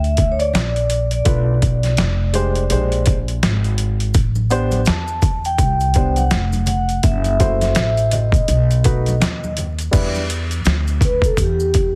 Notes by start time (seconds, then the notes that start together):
Already playing: D2 E5
0.04 closed hi-hat
0.17 kick, closed hi-hat
0.32 C#5
0.39 D5, closed hi-hat
0.53 A#1, snare, closed hi-hat
0.76 closed hi-hat
0.90 closed hi-hat
1.11 D5, closed hi-hat
1.25 B1 A3 D4 F4 B4, kick, closed hi-hat
1.62 kick, closed hi-hat
1.83 snare, closed hi-hat
1.97 F1, snare, closed hi-hat
2.33 G#3 D4 G4 C5, closed hi-hat
2.55 closed hi-hat
2.70 A#1 G#3 D4 G4 C5, closed hi-hat
2.92 closed hi-hat
3.06 kick, closed hi-hat
3.28 closed hi-hat
3.43 G#1, snare, closed hi-hat
3.64 closed hi-hat
3.78 closed hi-hat
4.00 closed hi-hat
4.14 A1, kick, closed hi-hat, maracas
4.35 high conga, maracas
4.50 B3 D4 G4 C5, closed hi-hat, maracas
4.71 closed hi-hat, high conga, maracas
4.85 E2 A5, snare, closed hi-hat, maracas
5.08 maracas
5.22 kick, closed hi-hat, low conga, maracas
5.45 G5, closed hi-hat, maracas
5.58 C2, kick, closed hi-hat, maracas
5.80 closed hi-hat, maracas
5.94 B3 D4 G4 C5, kick, closed hi-hat, maracas
6.16 F#5, closed hi-hat, high conga, maracas
6.31 F1, snare, closed hi-hat, maracas
6.53 closed hi-hat, high conga, maracas
6.66 F#5, closed hi-hat, low conga, maracas
6.89 closed hi-hat, maracas
7.03 F#1 E5, kick, closed hi-hat, maracas
7.24 closed hi-hat, high conga, maracas
7.39 A3 E4 F#4 C5, kick, closed hi-hat, maracas
7.61 E5, snare, closed hi-hat, high conga, maracas
7.75 A1, snare, closed hi-hat, maracas
7.97 closed hi-hat, maracas
8.11 D#5, closed hi-hat, low conga, maracas
8.32 kick, closed hi-hat, maracas
8.48 B1, closed hi-hat, maracas
8.71 closed hi-hat, maracas
8.84 A3 D#4 F#4 B4, kick, closed hi-hat, maracas
9.06 closed hi-hat, high conga, maracas
9.20 D#2, snare, closed hi-hat, maracas
9.44 high conga, maracas
9.57 closed hi-hat, low conga, maracas
9.79 closed hi-hat, maracas
9.91 E2 G3 D4 E4 B4, kick, closed hi-hat, crash, maracas
10.15 closed hi-hat, high conga, maracas
10.30 closed hi-hat, maracas
10.51 closed hi-hat, maracas
10.65 D2, snare, closed hi-hat, maracas
10.87 closed hi-hat, maracas
11.01 B4, kick, closed hi-hat, low conga, maracas
11.22 A4, kick, closed hi-hat, maracas
11.37 E2 G4, kick, closed hi-hat, maracas
11.60 maracas
11.74 kick, closed hi-hat, maracas